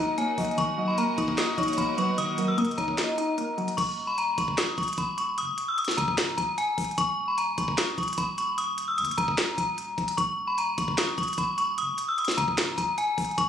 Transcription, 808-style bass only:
Already playing: D#1
0.38 D#1
0.58 D#1
1.18 D#1
1.28 D#1
1.58 D#1
1.78 D#1
2.58 D#2
2.68 D#1
2.78 D#1
2.88 D#1
3.78 D#1
4.38 D#1
4.58 C#1
4.68 D#1
4.78 D#1
4.98 D#1
5.38 F#1
5.48 D#1
5.98 C#1
6.38 D#1
6.78 D#1
6.98 D#1
7.58 D#1
7.98 D#1
8.18 D#1
8.98 D#2
9.08 D#1
9.18 D#1
9.58 D#1
9.98 D#1
10.18 D#1
10.78 D#1
10.98 C#1
11.08 D#1
11.18 D#1
11.38 D#1
11.78 F#1
11.88 D#1
12.38 C#1
12.78 D#1
13.18 D#1
13.38 D#1

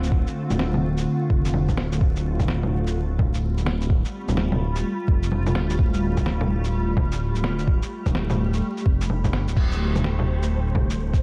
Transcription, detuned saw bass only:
Already playing: D1
0.50 D1
1.30 F1
1.77 D1
2.01 D1
4.28 D1
5.08 F1
5.55 D1
5.79 D1
8.06 D1
8.86 F1
9.33 G1
9.47 D1
9.56 D1

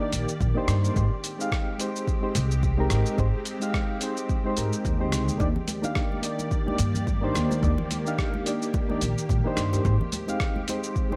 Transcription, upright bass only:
0.12 A#1
0.40 A#1
0.68 G2
0.96 G#1
2.35 C2
2.91 G#1
3.18 G#1
4.57 G#2
4.85 D#2
5.13 C2
5.28 D#2
5.40 D#2
6.79 G2
7.35 D#2
7.63 D#2
9.02 A#1
9.29 A#1
9.57 G2
9.85 G#1

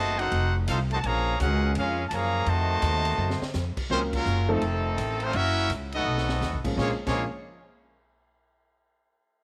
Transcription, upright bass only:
Already playing: F#1
0.32 F1
0.68 C2
1.04 A#1
1.40 C#2
1.76 F2
2.11 F#2
2.46 F2
2.82 D#2
3.18 F#2
3.41 muted upright bass stroke
3.54 F2
3.77 muted upright bass stroke
3.90 C#2
4.25 F#1
4.61 F1
4.97 A1
5.34 F#1
5.69 C#2
6.05 B1
6.40 D#2
6.53 B1
6.64 A1
6.77 A#1
7.06 A#1

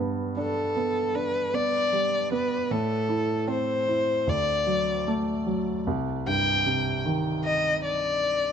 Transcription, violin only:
0.39 A4
1.15 B4
1.55 D5
2.33 B4
2.72 A4
3.50 C5
4.29 D5
6.28 G5
7.45 D#5
7.84 D5

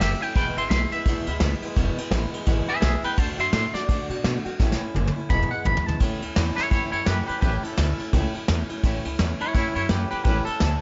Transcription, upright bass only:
0.00 F#1
0.21 muted upright bass stroke
0.35 E1
0.57 G#1
0.70 B1
0.92 muted upright bass stroke
1.05 C#2
1.27 D2
1.40 C#2
1.62 muted upright bass stroke
1.77 E1
1.97 muted upright bass stroke
2.11 A1
2.32 muted upright bass stroke
2.47 G#1
2.68 muted upright bass stroke
2.82 B1
3.03 muted upright bass stroke
3.18 D2
3.38 F#2
3.53 A2
3.74 muted upright bass stroke
4.10 B2
4.24 B2
4.45 muted upright bass stroke
4.60 A1
4.81 muted upright bass stroke
4.95 F#1
5.17 muted upright bass stroke
5.30 E1
5.65 G#1
5.86 muted upright bass stroke
6.00 A1
6.22 C#2
6.37 E2
6.58 muted upright bass stroke
6.72 F#2
6.93 F#2
7.07 F#2
7.29 muted upright bass stroke
7.43 A1
7.65 muted upright bass stroke
7.78 D2
8.00 muted upright bass stroke
8.13 C#2
8.35 muted upright bass stroke
8.49 E2
8.70 muted upright bass stroke
8.84 A1
9.05 C#2
9.19 E2
9.41 muted upright bass stroke
9.55 F#2
9.76 F#2
9.90 F#2
10.13 muted upright bass stroke
10.25 A1
10.47 muted upright bass stroke
10.61 D2

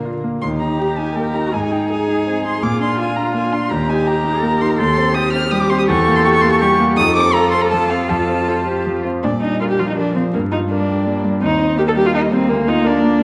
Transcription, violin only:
Already playing: A#4
0.42 C6
0.60 A#5
0.98 G#5
1.16 G5
1.33 A#5
1.53 G#5
1.71 G5
1.90 G#5
2.45 C6
2.63 D6
2.81 C6
2.99 G#5
3.16 A#5
3.34 G#5
3.52 C6
3.70 A#5
3.89 G#5
4.07 A#5
4.61 C6
4.69 A#5
4.78 C6
5.14 D#6
5.32 F6
5.51 D#6
5.61 D6
5.70 C6
5.79 D#6
5.88 C#6
6.16 C6
6.25 C#6
6.34 C#6
6.42 C6
6.52 C#6
6.60 C#6
6.97 D#6
7.15 D6
7.33 A#5
7.51 C6
7.62 A#5
7.70 A5
7.90 F5
8.09 A5
9.24 D5
9.43 D#5
9.60 F5
9.70 G5
9.79 F5
9.87 D#5
9.97 D5
10.15 C5
10.34 A#4
10.52 D#5
10.70 D5
11.42 D#5
11.78 G5
11.87 A5
11.97 G5
12.05 F5
12.14 D#5
12.31 C5
12.49 A#4
12.67 D#5
12.86 D5

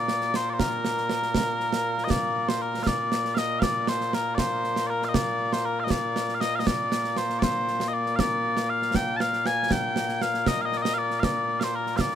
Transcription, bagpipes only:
Already playing: A#2 A#3 D5
0.36 C5
0.50 C5 D5
0.59 A#4
2.04 D#5
2.11 D5
2.49 C5
2.62 A#4
2.83 F5
2.87 D5
3.35 D#5 F5
3.59 D5 F5
3.89 C5
4.14 A#4
4.35 C5 D5
4.87 A#4 D5
5.05 F5
5.09 D#5
5.15 D5
5.53 C5
5.65 A#4
5.80 F5
5.84 D#5
5.91 D5
6.35 F5
6.41 D#5
6.55 D#5 F5
6.67 D5
7.17 C5
7.39 C5 D5
7.88 D#5
7.94 D5
8.16 F5
8.20 D5
8.70 F5
8.96 G5
9.17 F5 A5
9.46 G#5
9.72 G5
10.22 F5
10.48 D#5
10.61 D#5 F5
10.77 D5
10.82 D#5
10.94 F5
10.98 D5
11.20 F5
11.24 D5
11.60 C5 F5
11.75 A#4
11.97 F5
12.01 D5

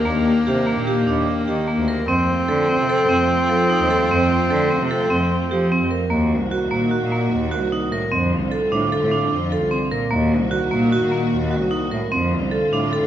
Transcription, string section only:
Already playing: D#3 D4 G4
2.10 F3 A3 F4
6.12 D#3 A#3 F#4
8.12 D3 C4 F4
10.11 D#3 A#3 F#4
12.13 D3 C4 F4

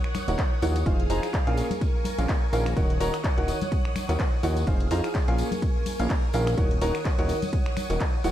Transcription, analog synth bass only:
0.28 D#1
0.62 D#2
0.86 F1
1.10 F1
1.47 A#1
2.19 A#1
2.53 A#1
2.77 D#1
3.00 D#1
3.38 D#1
4.09 D#2
4.43 D#2
4.67 F1
4.91 F2
5.28 A#1
6.00 A#1
6.34 A#1
6.58 D#1
6.81 D#1
7.19 D#1
7.90 D#1
8.24 D#1

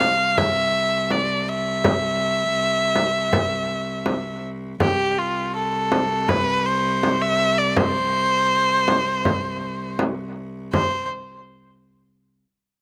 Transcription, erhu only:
Already playing: F5
0.38 E5
1.12 D5
1.48 E5
4.81 G4
5.19 F4
5.56 A4
6.29 B4
6.66 C5
7.22 E5
7.58 D5
7.77 C5
10.73 C5

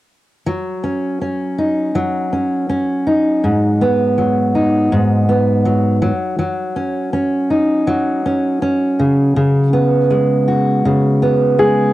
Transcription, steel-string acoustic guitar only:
0.46 F#3
0.84 C#4
1.21 C#4
1.58 D#4
1.95 F#3
2.33 C#4
2.69 C#4
3.07 D#4
3.44 G#2
3.81 B3
4.18 F#3
4.55 D#4
4.92 G#2
5.29 B3
5.65 F#3
6.02 F#3
6.39 F#3
6.76 C#4
7.13 C#4
7.50 D#4
7.87 F#3
8.26 C#4
8.62 C#4
8.99 C#3
9.36 C#3
9.73 B3
10.10 G#3
10.48 F#4
10.85 C#3
11.22 B3
11.58 G#3

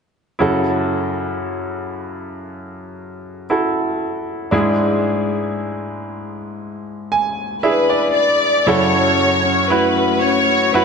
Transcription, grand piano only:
0.39 F#2 C#3 E4 F#4 A4
3.50 E4 F#4 A4
4.51 G#2 G#3 D4 E4 G#4
7.12 G#5
7.63 D4 E4 G#4 E5
7.90 D5
8.67 F#2 C#3 E4 F#4 A4
9.70 E4 F#4 B4
10.74 E4 F#4 B4

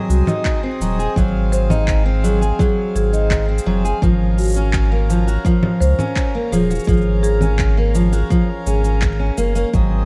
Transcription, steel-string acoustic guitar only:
Already playing: F#3
0.27 D#4
0.63 C4
0.81 F#3
0.99 G#4
1.17 F#3
1.70 D#4
2.06 C4
2.24 F#3
2.41 G#4
2.60 F#3
3.13 D#4
3.49 C4
3.66 F#3
3.85 G#4
4.03 F3
4.56 C#4
4.92 A#3
5.10 F3
5.27 F#4
5.45 F3
5.99 C#4
6.35 A#3
6.52 F3
6.70 F#4
6.88 F3
7.41 C#4
7.77 A#3
7.95 F3
8.12 F#4
8.30 F3
8.67 C#4
8.84 C#4
9.19 C#4
9.37 A#3
9.55 A#3
9.73 F#3

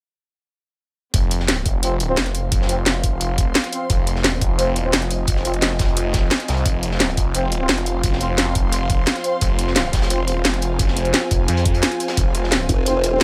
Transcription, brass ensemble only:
1.83 C4 F4 C5
2.09 C4 F4 C5
2.69 C4 F4 C5
3.72 C4 F4 C5
4.59 C4 F4 C5
4.85 C4 F4 C5
5.45 C4 F4 C5
7.35 C4 F4 C5
7.60 C4 F4 C5
8.21 C4 F4 C5
9.24 C4 F4 C5
10.10 C4 F4 C5
12.86 C4 F4 C5
13.12 C4 F4 C5

